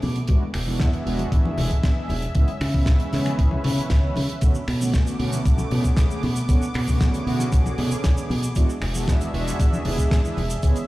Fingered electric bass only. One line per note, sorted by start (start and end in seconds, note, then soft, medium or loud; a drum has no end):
0.03 0.20 B2 medium
0.29 0.37 E2 medium
0.55 0.82 E1 medium
0.80 0.89 E2 medium
1.06 1.23 E1 medium
1.32 1.49 E2 loud
1.58 1.70 E1 medium
1.71 muted fingered electric bass stroke soft
1.84 1.92 E2 medium
2.09 2.26 E1 medium
2.35 2.44 C#2 medium
2.61 2.89 C#3 loud
2.87 2.96 C#2 medium
3.13 3.30 C#3 medium
3.39 3.56 C#2 medium
3.65 3.78 C#3 medium
3.78 muted fingered electric bass stroke soft
3.91 4.07 C#2 medium
4.17 4.25 C#3 medium
4.42 4.51 B1 medium
4.68 4.95 B2 loud
4.94 5.02 B1 medium
5.19 5.36 B2 medium
5.46 5.62 B1 medium
5.72 5.84 B2 medium
5.84 muted fingered electric bass stroke soft
5.97 6.06 B1 medium
6.23 6.40 B2 medium
6.49 6.58 B1 loud
6.75 7.02 B2 medium
7.01 7.09 B1 medium
7.26 7.43 B2 medium
7.53 7.69 B1 loud
7.78 7.91 B2 medium
7.91 muted fingered electric bass stroke soft
8.04 8.13 B1 medium
8.30 8.47 B2 medium
8.56 8.65 E2 loud
8.82 9.09 E1 loud
9.08 9.16 E2 medium
9.33 9.50 E1 medium
9.60 9.76 E2 loud
9.85 9.98 E1 medium
9.98 muted fingered electric bass stroke soft
10.11 10.20 E2 medium
10.37 10.54 E1 medium
10.63 10.72 C#2 loud